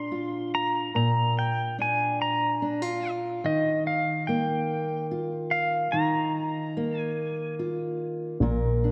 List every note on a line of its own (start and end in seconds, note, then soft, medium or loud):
0.00 0.90 A#2 medium
0.00 0.90 D4 soft
0.00 0.11 F4 soft
0.00 0.54 C6 medium
0.12 2.62 F4 soft
0.55 0.95 A#5 medium
0.95 3.39 A#2 medium
0.95 1.38 A#5 medium
1.39 1.76 G5 medium
1.79 2.61 D4 soft
1.79 2.21 G#5 medium
2.22 3.10 A#5 medium
2.62 2.82 D4 soft
2.82 3.44 F4 soft
3.44 5.88 D#3 medium
3.44 3.83 D#5 medium
3.87 4.29 F5 medium
4.27 6.76 A#3 soft
4.27 5.06 G5 medium
5.11 5.96 F4 soft
5.51 5.94 F5 medium
5.92 8.37 D#3 medium
5.92 6.99 A#5 medium
6.77 8.92 A#3 soft
6.99 7.54 G#5 medium
7.59 8.37 F4 soft
8.40 8.92 A#1 medium
8.40 8.92 A#2 medium
8.40 8.92 A#4 medium
8.84 8.92 D4 soft